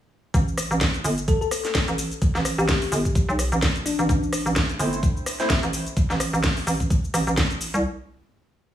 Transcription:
0.34 A1, kick, closed hi-hat, cabasa
0.48 cabasa
0.58 cross-stick, open hi-hat, cabasa
0.71 A1, cabasa
0.81 kick, snare, closed hi-hat, cabasa
0.94 closed hi-hat, cabasa
1.04 G1, open hi-hat, cabasa
1.18 closed hi-hat, cabasa
1.28 A4, kick, closed hi-hat, cabasa
1.41 A4, cabasa
1.51 cross-stick, open hi-hat, cabasa
1.65 snare, closed hi-hat, cabasa
1.75 kick, snare, closed hi-hat, cabasa
1.88 A1, closed hi-hat, cabasa
1.98 open hi-hat, cabasa
2.11 closed hi-hat, cabasa
2.22 kick, closed hi-hat, cabasa
2.35 A1, snare, cabasa
2.45 cross-stick, open hi-hat, cabasa
2.58 A1 G4, cabasa
2.69 kick, snare, closed hi-hat, cabasa
2.82 open hi-hat, cabasa
2.92 G1, open hi-hat, cabasa
3.05 kick, closed hi-hat, cabasa
3.15 kick, closed hi-hat, cabasa
3.29 B1, cabasa
3.39 cross-stick, open hi-hat, cabasa
3.52 A1, closed hi-hat, cabasa
3.62 kick, snare, closed hi-hat, cabasa
3.76 closed hi-hat, cabasa
3.86 D4, open hi-hat, cabasa
3.99 A1, closed hi-hat, cabasa
4.09 A1, kick, closed hi-hat, cabasa
4.23 cabasa
4.33 cross-stick, open hi-hat, cabasa
4.46 A1, cabasa
4.56 kick, snare, closed hi-hat, cabasa
4.69 closed hi-hat, cabasa
4.79 G1 A3 C4 E4 C5, open hi-hat, cabasa
4.93 closed hi-hat, cabasa
5.03 kick, closed hi-hat, cabasa
5.17 cabasa
5.26 cross-stick, open hi-hat, cabasa
5.40 A3 C4 E4 C5, snare, cabasa
5.50 kick, snare, closed hi-hat, cabasa
5.63 A1, closed hi-hat, cabasa
5.73 open hi-hat, cabasa
5.87 closed hi-hat, cabasa
5.97 kick, closed hi-hat, cabasa
6.10 A1, snare, cabasa
6.20 cross-stick, open hi-hat, cabasa
6.33 A1, cabasa
6.44 kick, snare, closed hi-hat, cabasa
6.57 open hi-hat, cabasa
6.67 A1, open hi-hat, cabasa
6.80 kick, closed hi-hat, cabasa
6.90 kick, closed hi-hat, cabasa
7.04 cabasa
7.14 A1, cross-stick, open hi-hat, cabasa
7.27 A1, closed hi-hat, cabasa
7.37 kick, snare, closed hi-hat, cabasa
7.51 closed hi-hat, cabasa
7.61 open hi-hat, cabasa
7.74 C2, closed hi-hat, cabasa

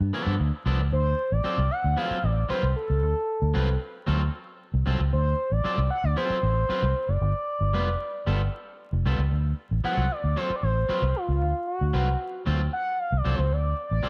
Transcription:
0.01 G2
0.13 F3 B3 D4 A4
0.27 G2
0.40 D2
0.66 C2 F3 B3 D4 A4
0.79 C#2
0.92 D2 C5
1.32 A1 D5
1.44 F#3 C4 F4 A4, muted fingered electric bass stroke
1.58 C2
1.71 F#5
1.84 D2
1.97 F#3 C4 F4 A4 F5
2.11 muted fingered electric bass stroke
2.24 A1 D5
2.49 F#3 C4 F4 B4 C5, muted fingered electric bass stroke
2.63 C2 C5
2.76 A4
2.90 C#2
3.03 D2
3.42 D2
3.54 C2 F#3 C4 F4 B4
4.07 D2 F#3 C4 F4 A4
4.74 C2
4.86 C2 F#3 C4 F4 A4
5.00 C#2
5.13 D2 C5
5.52 A1 D5
5.64 F#3 C4 F4 A4, muted fingered electric bass stroke
5.78 C2
5.91 F#5
6.04 D2 D5
6.16 F#3 C4 F4 A4 C5
6.30 muted fingered electric bass stroke
6.43 A1
6.69 F#3 C4 F4 B4, muted fingered electric bass stroke
6.83 C2
7.09 F#1 D5
7.21 G1
7.61 G1
7.74 F1 G3 B3 F4 B4
8.26 G1 G3 B3 F4 A4
8.93 F1
9.06 C2 G3 B3 F4 A4
9.19 C#2
9.32 D2
9.71 A1
9.84 F#3 C4 F4 A4 F#5
9.97 C2
10.11 D5
10.24 D2
10.36 F#3 C4 F4 A4 C5
10.50 muted fingered electric bass stroke
10.56 D5
10.63 A1 C5
10.89 F#3 C4 F4 B4, muted fingered electric bass stroke
11.02 C2
11.16 F4
11.29 C#2
11.42 D2
11.67 F#4
11.81 D2
11.93 C2 F#3 C4 F4 B4
12.46 D2 F#3 C4 F4 A4
12.73 F#5
12.99 F5
13.12 C2
13.17 D5
13.25 C2 F#3 C4 F4 A4
13.35 C#2 C5
13.52 D2 D5
13.87 D5
13.91 A1
14.03 F#3 C4 F4 A4

